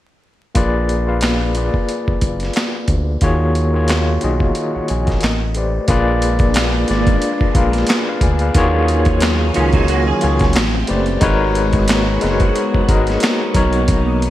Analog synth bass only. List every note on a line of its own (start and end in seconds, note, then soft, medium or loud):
0.56 1.70 A#1 medium
2.09 2.14 F#1 soft
2.23 2.51 F#1 medium
2.89 3.17 D2 medium
3.23 4.18 D#2 loud
4.24 4.52 B1 medium
4.76 4.81 A#1 soft
4.91 5.18 A#1 medium
5.23 5.80 A1 loud
5.90 6.85 A#1 loud
6.90 7.18 G#1 loud
7.42 7.47 A#1 soft
7.56 7.84 A#1 medium
8.22 8.51 D2 medium
8.56 9.51 D#2 loud
9.57 10.13 C#2 medium
10.24 10.58 C#2 medium
10.56 10.84 A1 medium
10.90 11.18 F#1 loud
11.23 12.18 G#1 loud
12.23 12.51 F#1 medium
12.75 12.81 G#1 soft
12.89 13.18 G#1 medium
13.56 14.30 B1 medium